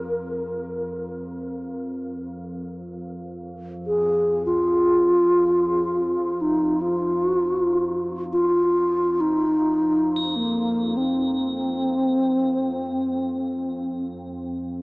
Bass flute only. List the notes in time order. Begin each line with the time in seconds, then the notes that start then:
Already playing: A#4
3.87 G#4
4.46 F4
6.41 D#4
6.81 F4
7.25 F#4
7.37 F4
7.50 F#4
7.62 F4
8.32 F4
9.20 D#4
10.36 A#3
10.97 C4